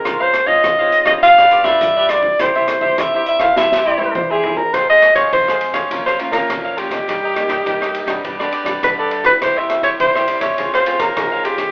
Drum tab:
RD |----------------|----------------|x-xxx-xxx-xxx-xx|x-xxx-xxx-xxx-xx|
HH |x-x-x-xxxxx-x-x-|x-x-x-x---------|----------------|----------------|
SD |r-r-r--r-r-r--r-|r-r-r--roo------|r-rr-r-r-r-rr--r|r-rr-r-r-r-rr--r|
T1 |----------------|-----------o----|----------------|----------------|
T2 |----------------|------------o---|----------------|----------------|
FT |----------------|--------------oo|----------------|----------------|
BD |o--oo--oo--oo--o|o--oo--oo---o---|o--oo--oo--oo--o|o--oo--oo--oo--o|

RD |x-xxx-xxx-xxx-xx|
HH |----------------|
SD |r-rr-r-r-r-rr--r|
T1 |----------------|
T2 |----------------|
FT |----------------|
BD |o--oo--oo--oo--o|